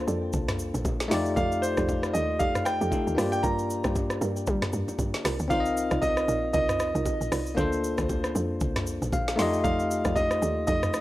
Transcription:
Already playing: A#3 D4 F4 A4 C5
0.07 F2 A4 C5 D5, high bongo, low bongo, shaker
0.33 C2, kick, low conga, shaker
0.48 cross-stick, snare, mid tom, shaker
0.59 shaker
0.74 A#1, low bongo, shaker
0.85 A#1, kick, high bongo, low conga, shaker
1.00 snare, shaker
1.08 F2 A3 D#4 F4 G4 A4 D5, snare, open hi-hat, high bongo, low bongo, shaker
1.13 G4 D5
1.26 shaker
1.36 F2 D#4 G4 A4 D5 F5, kick, low conga, shaker
1.52 shaker
1.62 C5, shaker
1.77 F2 D#4 G4 A4 D5, kick, cross-stick, shaker
1.89 kick, high bongo, shaker
2.03 cross-stick, shaker
2.13 D#2 D#4 G4 A4 D5 D#5, high bongo, low bongo, shaker
2.39 F2 D#4 G4 A4 D5 F5, kick, low conga, shaker
2.55 cross-stick, mid tom, shaker
2.65 G5, cross-stick, shaker
2.81 F2 D#4 G4 A4 D5, low bongo, shaker
2.91 A3 D#4 F4 G4 A4, kick, high bongo, low conga, shaker
3.07 D#2, shaker
3.15 G2 A#3 D4 F4 G4 A#4, cross-stick, open hi-hat, high bongo, low bongo, shaker
3.20 G4 D5
3.32 G5, shaker
3.43 G2 F4 G4 A#4 A#5, kick, low conga, shaker
3.59 shaker
3.70 shaker
3.84 G2, kick, cross-stick, shaker
3.95 kick, high bongo, shaker
4.10 cross-stick, shaker
4.21 G2 F4 G4 A#4, high bongo, low bongo, shaker
4.36 shaker
4.47 G3, kick, low conga, shaker
4.62 cross-stick, snare, mid tom, shaker
4.73 G2, shaker
4.88 low bongo, shaker
4.99 G2, kick, high bongo, low conga, shaker
5.14 snare, shaker
5.25 C2 F4 G4 A#4, cross-stick, snare, open hi-hat, high bongo, low bongo, shaker
5.39 D2, shaker
5.48 C2 C4 D#4 F4 A#4 D5 F5, kick, low conga, shaker
5.52 A#4 C5
5.60 D#5
5.66 shaker
5.77 shaker
5.91 C2 D#4 F4 A#4 D5, kick, cross-stick, shaker
6.02 D#5, kick, high bongo, shaker
6.17 cross-stick, shaker
6.28 A#1 D#4 F4 A#4 D5, high bongo, low bongo, shaker
6.53 C2 D#4 F4 A#4 D#5, kick, low conga, shaker
6.69 cross-stick, mid tom, shaker
6.80 cross-stick, shaker
6.95 C2 D#4 F4 A#4 D#5, low bongo, shaker
7.06 kick, high bongo, low conga, shaker
7.21 A#1, shaker
7.32 C2 D#4 F4 A#4 D5, cross-stick, open hi-hat, high bongo, low bongo, shaker
7.46 shaker
7.55 D2 A#3 D4 F4 A4 C5, kick, low conga, shaker
7.59 A4 C5
7.72 shaker
7.84 shaker
7.98 D2, kick, cross-stick, shaker
8.09 kick, high bongo, shaker
8.24 cross-stick, shaker
8.35 F2 D4 A4 C5, high bongo, low bongo, shaker
8.60 C2, kick, low conga, shaker
8.76 cross-stick, snare, mid tom, shaker
8.87 shaker
9.02 A#1, low bongo, shaker
9.13 A#1 F5, kick, high bongo, low conga, shaker
9.28 snare, shaker
9.36 F2 A3 D#4 F4 G4 A4 D5 C6, snare, open hi-hat, high bongo, low bongo, shaker
9.40 G4 D#5
9.53 shaker
9.64 F2 D#4 G4 A4 D5 F5, kick, low conga, shaker
9.79 shaker
9.91 shaker
10.05 F2 D#4 G4 A4 D5, kick, cross-stick, shaker
10.16 D#5, kick, high bongo, shaker
10.31 cross-stick, shaker
10.42 D#2 D#4 G4 A4 D5, high bongo, low bongo, shaker
10.67 F2 D#4 G4 A4 D#5, kick, low conga, shaker
10.83 cross-stick, mid tom, shaker
10.93 cross-stick, shaker

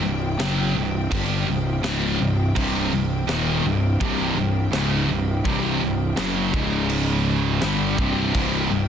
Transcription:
Already playing: C4 G5
0.03 C1 C2 G2
0.39 F#1 F#2 C#3 F#3, snare, crash
0.75 C1 C2 G2
1.11 G1 G2 D3 G3, kick, crash
1.47 C1 C2 G2
1.83 C#1 C#2 G#2 C#3, snare, crash
2.20 C1 C2 G2
2.56 C1 C2 G2 C3, kick, crash
2.91 C1 C2 G2
3.27 D#1 D#2 A#2, snare, crash
3.31 D#3
3.64 C1 C2 G2
4.00 C1 C2 G2 C3, kick, crash
4.35 C1 C2 G2
4.72 C#1 C#2 G#2 C#3, snare, crash
5.08 C1 C2 G2
5.44 C1 C2 G2 C3, kick, crash
5.81 C1 C2 G2
6.17 F#1 F#2 C#3 F#3, snare, crash
6.53 C#1 C#2 G#2 C#3 G#3 G#4, kick
6.89 crash
7.61 G1 G2 D3 G3 C4 G5, snare, crash
7.98 C1 C2 G2 C3, kick
8.35 C1 C2 G2 C3, kick, crash
8.70 C1 C2 G2

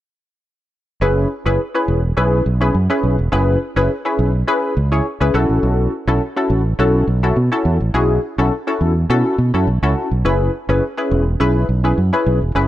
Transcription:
1.01 F#1 C#4 E4 G#4 B4
1.46 F#1 C#4 E4 G#4 B4
1.74 C#4 E4 G#4 B4
1.88 E1
2.17 B1 C#4 E4 G#4 B4
2.46 B1
2.61 C#4 E4 G#4 B4
2.75 F#2
2.90 C#4 E4 G#4 B4
3.03 B1
3.19 E1
3.32 F#1 C#4 E4 G#4 B4
3.76 F#1 C#4 E4 G#4 B4
4.05 C#4 E4 G#4 B4
4.19 B1
4.47 C#4 E4 G#4 B4
4.77 C#2
4.92 C#4 E4 G#4 C#5
5.20 C#2 C#4 E4 G#4 B4
5.34 B1 C#4 E4 F#4 A4
5.49 A1
5.63 B1
6.07 B1 C#4 E4 F#4 A4
6.36 C#4 E4 F#4 A4
6.50 A1
6.79 B1 C#4 E4 F#4 A4
7.08 B1
7.23 C#4 E4 F#4 A4
7.36 B2
7.52 C#4 E4 F#4 A4
7.65 E2
7.80 A1
7.94 B1 C#4 E4 F#4 G#4
8.38 B1 C#4 E4 F#4 A4
8.67 C#4 E4 F#4 A4
8.81 E2
9.10 B2 C#4 E4 F#4 A4
9.38 B2
9.54 F#2 C#4 E4 F#4 A4
9.67 B1
9.82 C#2 C#4 E4 F#4 A4
10.11 B1
10.25 F#1 C#4 E4 G#4 B4
10.69 F#1 C#4 E4 G#4 B4
10.97 C#4 E4 G#4 B4
11.11 E1
11.40 B1 C#4 E4 G#4 B4
11.69 B1
11.84 C#4 E4 G#4 B4
11.98 F#2
12.13 C#4 E4 G#4 B4
12.26 B1
12.42 E1
12.55 F#1 C#4 E4 G#4 B4

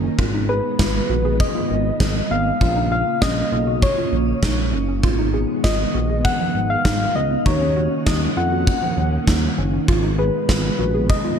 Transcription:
Already playing: D#3 A#3 C#4 D#4
0.04 C#4
0.19 G#1 D#3 G#3 B3 F4, kick
0.34 D#4
0.49 G#4 B4
0.79 G#1 F4, kick, snare
1.10 A#1 F#4
1.25 G#4
1.40 D#5, kick
1.55 F4
1.70 G#1
2.00 G#1 D#4, kick, snare
2.31 G#1 B3 F5
2.46 B3
2.61 A#1 C#3 A#3 F4, kick
2.76 D#4
2.92 F4 F5
3.22 A#1 C#4 D#5, kick, snare
3.52 B1 F4
3.67 F#4
3.82 C#5, kick
3.97 F4
4.13 A#1
4.43 A#1 D#4, kick, snare
4.73 F#1 C#4
4.88 C#4
5.03 G#1 D#3 G#3 B3 F4, kick
5.19 D#4
5.34 G#4
5.64 G#1 F4 D#5, kick, snare
5.94 A#1 F#4
6.09 G#4
6.25 F#5, kick
6.40 F3
6.55 G#1
6.70 F5
6.85 G#1 D#4, kick, snare
7.16 C#2 B3 D#5
7.31 B3
7.46 D#2 A#3 C#4 D#4 C#5 F#5, kick
7.61 C#4
7.76 F#4
8.06 D#2 D#4 D#5, kick, snare
8.37 F2 F4 F#5
8.52 F#4
8.67 kick
8.82 F3
8.97 D#2
9.27 D#2 D#4, kick, snare
9.58 F#1 C#4
9.73 C#4
9.88 G#1 G#3 B3 F4, kick
10.03 D#4
10.19 G#4 B4
10.49 G#1 F4, kick, snare
10.79 A#1 F#4
10.94 G#4
11.10 D#5, kick
11.24 F4

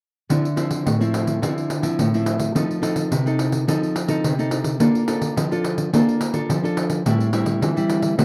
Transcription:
0.29 D3 F3 C4 E4, pandeiro
0.45 pandeiro
0.56 F3 C4 E4, pandeiro
0.71 pandeiro
0.86 A2, pandeiro
1.00 F3 C4 E4, pandeiro
1.14 pandeiro
1.27 pandeiro
1.42 D3 F3 C4 E4, pandeiro
1.58 pandeiro
1.70 pandeiro
1.82 F3 C4 E4, pandeiro
1.99 A2, pandeiro
2.14 F3 C4 E4, pandeiro
2.26 pandeiro
2.40 pandeiro
2.55 F3 C4 D#4 A4, pandeiro
2.71 pandeiro
2.82 C4 D#4 A4, pandeiro
2.96 pandeiro
3.11 C3, pandeiro
3.26 C4 D#4 A4, pandeiro
3.39 pandeiro
3.52 pandeiro
3.67 F3 C4 D#4 A4, pandeiro
3.83 pandeiro
3.96 pandeiro
4.08 C4 D#4 A4, pandeiro
4.24 C3, pandeiro
4.38 C4 D#4 A4, pandeiro
4.51 pandeiro
4.64 pandeiro
4.80 A#3 D4 F4 A4, pandeiro
4.95 pandeiro
5.07 D4 F4 A4, pandeiro
5.22 pandeiro
5.36 F3, pandeiro
5.51 D4 F4 A4, pandeiro
5.64 pandeiro
5.78 pandeiro
5.93 A#3 D4 F4 A4, pandeiro
6.09 pandeiro
6.21 pandeiro
6.33 D4 F4 A4, pandeiro
6.49 F3, pandeiro
6.63 D4 F4 A4, pandeiro
6.77 pandeiro
6.90 pandeiro
7.06 A2 G3 C4 E4, pandeiro
7.20 pandeiro
7.33 G3 C4 E4, pandeiro
7.46 pandeiro
7.62 E3, pandeiro
7.76 G3 C4 E4, pandeiro
7.90 pandeiro
8.02 pandeiro
8.18 D3 A3 C4 F#4, pandeiro

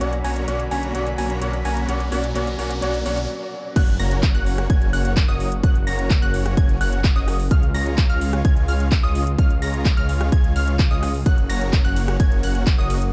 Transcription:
Already playing: F#3, riser
0.00 B1 D3 F#3 A#3 C#4 F#4 C#5 D5 F#5 B5, closed hi-hat
0.13 closed hi-hat
0.24 B1 A#3 C#4 F#4 C#5 G#5 A#5, open hi-hat
0.36 closed hi-hat
0.47 B1 F#3 A#3 C#4 F#4 C#5 D5 F#5, closed hi-hat
0.60 closed hi-hat
0.71 B1 A#3 C#4 F#4 C#5 G#5 A#5, open hi-hat
0.83 closed hi-hat
0.94 B1 F#3 A#3 C#4 F#4 C#5 D5 F#5, closed hi-hat
1.06 closed hi-hat
1.18 B1 A#3 C#4 F#4 C#5 G#5 A#5, open hi-hat
1.30 closed hi-hat
1.40 B1 F#3 A#3 C#4 F#4 C#5 D5 F#5, closed hi-hat
1.53 closed hi-hat
1.65 B1 A#3 C#4 F#4 C#5 G#5 A#5, open hi-hat
1.77 closed hi-hat
1.87 B1 F#3 A#3 C#4 F#4 C#5 D5 F#5, closed hi-hat
2.00 closed hi-hat
2.11 B1 F#3 A#3 C#4 F#4 C#5 D5 F#5, open hi-hat
2.24 closed hi-hat
2.34 B1 F#3 A#3 C#4 F#4 C#5 D5 F#5, closed hi-hat
2.47 closed hi-hat
2.58 B1 F#3 A#3 C#4 F#4 C#5 D5 F#5, open hi-hat
2.71 closed hi-hat
2.81 B1 F#3 A#3 C#4 F#4 C#5 D5 F#5, closed hi-hat
2.94 closed hi-hat
3.04 B1 F#3 A#3 C#4 F#4 C#5 D5 F#5, open hi-hat
3.17 closed hi-hat
3.76 F#1 C#3 A#3 C#4 F#4 C#5 F#5 F#6, kick, closed hi-hat, crash, impact
3.88 closed hi-hat
3.99 F#1 A#3 C#4 F#4 C#5 A#5 A#6, open hi-hat
4.11 closed hi-hat
4.23 kick, clap, closed hi-hat
4.35 F#1 A#3 C#4 F#4 C#5 F#5 F#6, closed hi-hat
4.46 open hi-hat
4.58 cross-stick, closed hi-hat
4.70 F#1 A#3 C#4 F#4 C#5 G#5 G#6, kick, closed hi-hat
4.82 closed hi-hat
4.93 F#1 A#3 C#4 F#4 C#5 F#5 F#6, open hi-hat
5.05 closed hi-hat
5.17 kick, clap, closed hi-hat
5.28 F#1 A#3 C#4 F#4 C#5 D#5 D#6
5.40 open hi-hat
5.52 closed hi-hat
5.63 F#1 A#3 C#4 F#4 C#5 F#5 F#6, kick, closed hi-hat
5.75 closed hi-hat
5.87 F#1 A#3 C#4 F#4 C#5 A#5 A#6, open hi-hat
5.99 closed hi-hat
6.10 kick, clap, closed hi-hat
6.22 F#1 A#3 C#4 F#4 C#5 F#5 F#6, closed hi-hat
6.34 open hi-hat
6.46 cross-stick, closed hi-hat
6.57 F#1 A#3 C#4 F#4 C#5 G#5 G#6, kick, closed hi-hat
6.69 closed hi-hat
6.81 F#1 A#3 C#4 F#4 C#5 F#5 F#6, open hi-hat
6.93 closed hi-hat
7.04 kick, clap, closed hi-hat
7.16 F#1 A#3 C#4 F#4 C#5 D#5 D#6
7.28 cross-stick, open hi-hat
7.39 open hi-hat
7.51 C#2 G#3 C#4 F4 C#5 F5 F6, kick, closed hi-hat
7.63 closed hi-hat
7.74 C#2 G#3 C#4 F4 C#5 A#5 A#6, open hi-hat
7.86 closed hi-hat
7.98 kick, clap, closed hi-hat
8.10 C#2 G#3 C#4 F4 C#5 F5 F6, closed hi-hat
8.21 open hi-hat
8.33 cross-stick, closed hi-hat
8.45 C#2 G#3 C#4 F4 C#5 G#5 G#6, kick, closed hi-hat
8.57 closed hi-hat
8.68 C#2 G#3 C#4 F4 C#5 F5 F6, open hi-hat
8.80 closed hi-hat
8.92 kick, clap, closed hi-hat
9.03 C#2 G#3 C#4 F4 C#5 D#5 D#6
9.15 open hi-hat
9.27 closed hi-hat
9.39 C#2 G#3 C#4 F4 C#5 F5 F6, kick, closed hi-hat
9.50 closed hi-hat
9.62 C#2 G#3 C#4 F4 C#5 A#5 A#6, open hi-hat
9.74 closed hi-hat
9.85 kick, clap, closed hi-hat
9.97 C#2 G#3 C#4 F4 C#5 F5 F6, closed hi-hat
10.09 open hi-hat
10.21 cross-stick, closed hi-hat
10.32 C#2 G#3 C#4 F4 C#5 G#5 G#6, kick, closed hi-hat
10.44 closed hi-hat
10.56 C#2 G#3 C#4 F4 C#5 F5 F6, open hi-hat
10.68 closed hi-hat
10.79 kick, clap, closed hi-hat
10.91 C#2 G#3 C#4 F4 C#5 D#5 D#6
11.03 cross-stick, open hi-hat
11.14 open hi-hat
11.26 F#1 A#3 C#4 F#4 C#5 F#5 F#6, kick, closed hi-hat, ride
11.38 closed hi-hat
11.49 F#1 A#3 C#4 F#4 C#5 A#5 A#6, open hi-hat, ride
11.61 closed hi-hat
11.73 kick, clap, closed hi-hat, ride
11.85 F#1 A#3 C#4 F#4 C#5 F#5 F#6, closed hi-hat
11.96 open hi-hat, ride
12.08 cross-stick, closed hi-hat
12.20 F#1 A#3 C#4 F#4 C#5 G#5 G#6, kick, closed hi-hat, ride
12.32 closed hi-hat
12.43 F#1 A#3 C#4 F#4 C#5 F#5 F#6, open hi-hat, ride
12.55 closed hi-hat
12.67 kick, clap, closed hi-hat, ride
12.78 F#1 A#3 C#4 F#4 C#5 D#5 D#6
12.90 open hi-hat, ride
13.02 closed hi-hat

